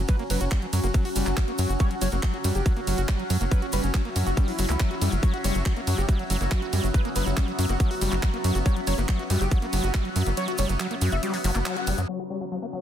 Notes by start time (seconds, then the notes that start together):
Already playing: F#3 C#4 F#4 F#5
0.08 F#3 B4, kick, closed hi-hat, ride, cabasa
0.19 A#3 C#4, closed hi-hat
0.30 F#1 F#3 B4, open hi-hat, ride, cabasa
0.40 F#1 C#4 F#4, closed hi-hat, cabasa
0.51 G3, kick, clap, closed hi-hat, cabasa
0.62 F#3, closed hi-hat
0.73 F#2 F#3 C#4, open hi-hat, ride, cabasa
0.83 F#1 A#3 F#4, closed hi-hat, cabasa
0.94 F#3 C#4, kick, closed hi-hat, ride, cabasa
1.05 F#4, open hi-hat
1.16 F#1 G3, open hi-hat, ride, cabasa
1.26 F#1 F#3, clap, closed hi-hat, cabasa
1.37 F#3, kick, clap, closed hi-hat, ride, cabasa
1.48 A#3, closed hi-hat
1.58 F#2 F#3, open hi-hat, ride, cabasa
1.69 F#1 F#4, closed hi-hat, cabasa
1.80 G3 C#5, kick, closed hi-hat, ride, cabasa
1.91 F#3 F#4, closed hi-hat
2.01 F#1 F#3 C#5, open hi-hat, ride, cabasa
2.12 F#1 A#3 F#4, closed hi-hat, cabasa
2.23 F#3 F#4, kick, clap, closed hi-hat, ride, cabasa
2.34 F#4, closed hi-hat
2.44 F#2 G3 F#4, open hi-hat, ride, cabasa
2.55 F#1 F#3 G4 E5, closed hi-hat, cabasa
2.66 F#3 F#4, kick, closed hi-hat, ride, cabasa
2.76 A#3 F#4, closed hi-hat
2.87 F#1 F#3, open hi-hat, ride, cabasa
2.98 F#1 F#4, closed hi-hat, cabasa
3.09 G3, kick, clap, closed hi-hat, ride, cabasa
3.19 F#3, closed hi-hat
3.30 F#2 F#3, open hi-hat, ride, cabasa
3.41 F#1 A#3, closed hi-hat, cabasa
3.52 F#3 B4, kick, closed hi-hat, ride, cabasa
3.62 C#4 F#4, closed hi-hat
3.72 F#1 G3 B4, open hi-hat, ride, cabasa
3.83 F#1 F#3 C#4, closed hi-hat, cabasa
3.94 F#3 C#4, kick, clap, closed hi-hat, ride, cabasa
4.05 A#3, closed hi-hat
4.16 F#2 F#3 C#4, open hi-hat, ride, cabasa
4.26 F#1 F#4, closed hi-hat, cabasa
4.37 G3 C#4, kick, closed hi-hat, ride, cabasa
4.48 F#3 E4, open hi-hat
4.58 F#1 F#3, open hi-hat, ride, cabasa
4.69 C#2 A#3, clap, closed hi-hat, cabasa
4.80 F#3, kick, clap, closed hi-hat, ride, cabasa
4.91 F#4, closed hi-hat
5.01 F#2 G3, open hi-hat, ride, cabasa
5.12 F#1 F#3, closed hi-hat, cabasa
5.23 F#3 B3 C#5, kick, closed hi-hat, ride, cabasa
5.34 F#4, closed hi-hat
5.44 F#1 G3 C#5, open hi-hat, ride, cabasa
5.55 F#1 F#3 F#4, closed hi-hat, cabasa
5.66 F#3 F#4, kick, clap, closed hi-hat, ride, cabasa
5.76 A#3, closed hi-hat
5.87 F#2 F#3 F#4, open hi-hat, ride, cabasa
5.98 F#1 F#4 G4, closed hi-hat, cabasa
6.09 G3 F#4, kick, closed hi-hat, ride, cabasa
6.19 F#3 F#4, closed hi-hat
6.30 F#1 F#3, open hi-hat, ride, cabasa
6.41 F#1 A#3, closed hi-hat, cabasa
6.51 F#3, kick, clap, closed hi-hat, cabasa
6.62 F#4, closed hi-hat
6.73 F#2 G3, open hi-hat, ride, cabasa
6.84 F#1 F#3, closed hi-hat, cabasa
6.94 F#3 B4, kick, closed hi-hat, ride, cabasa
7.05 A#3 C#4, closed hi-hat
7.16 F#1 F#3 B4, open hi-hat, ride, cabasa
7.26 F#1 C#4 F#4, closed hi-hat, cabasa
7.37 G3 C#4, kick, clap, closed hi-hat, cabasa
7.48 F#3, closed hi-hat
7.59 F#2 F#3 C#4, open hi-hat, ride, cabasa
7.69 F#1 A#3 F#4, closed hi-hat, cabasa
7.80 F#3 C#4, kick, closed hi-hat, ride, cabasa
7.91 F#4, open hi-hat
8.01 F#1 G3, open hi-hat, ride, cabasa
8.12 F#1 F#3, clap, closed hi-hat, cabasa
8.23 F#3, kick, clap, closed hi-hat, ride, cabasa
8.34 A#3, closed hi-hat
8.44 F#2 F#3, open hi-hat, ride, cabasa
8.55 F#1 F#4, closed hi-hat, cabasa
8.66 G3 C#5, kick, closed hi-hat, ride, cabasa
8.76 F#3 F#4, closed hi-hat
8.87 F#1 F#3 C#5, open hi-hat, ride, cabasa
8.98 F#1 A#3 F#4, cabasa
9.09 F#3, kick, clap, closed hi-hat, cabasa
9.19 F#4, closed hi-hat
9.30 F#2 G3 F#4, open hi-hat, ride, cabasa
9.41 F#1 F#3 G4, closed hi-hat, cabasa
9.51 F#3 F#4, kick, closed hi-hat, ride, cabasa
9.62 A#3 F#4, closed hi-hat
9.73 F#1 F#3, open hi-hat, ride, cabasa
9.83 F#1 F#4, closed hi-hat, cabasa
9.94 G3, kick, clap, closed hi-hat, cabasa
10.05 F#3, closed hi-hat
10.16 F#2 F#3, open hi-hat, ride, cabasa
10.26 F#1 A#3, closed hi-hat, cabasa
10.37 F#3 C#5, closed hi-hat, ride, cabasa
10.48 F#4, closed hi-hat
10.58 F#1 G3 C#5, open hi-hat, ride, cabasa
10.69 F#1 F#3 F#4, closed hi-hat, cabasa
10.80 F#3 F#4, clap, closed hi-hat, ride, cabasa
10.91 A#3, closed hi-hat
11.01 F#2 F#3 F#4, open hi-hat, ride, cabasa
11.12 F#1 F#4 E5, closed hi-hat, cabasa
11.23 G3 F#4, closed hi-hat, ride, cabasa
11.34 F#3 F#5, open hi-hat
11.44 F#1 F#3, open hi-hat, ride, cabasa
11.55 F#1 A#3, clap, closed hi-hat, cabasa
11.66 F#3, clap, closed hi-hat, ride, cabasa
11.76 F#4, closed hi-hat
11.87 F#1 G3, open hi-hat, ride, cabasa
11.98 F#2 F#3, closed hi-hat, cabasa
12.09 F#3 C#4 C#5, crash
12.19 F#4
12.30 G3 C#5
12.41 F#3 F#4 F#5
12.48 F#3 F#4
12.62 A#3
12.73 F#3 F#4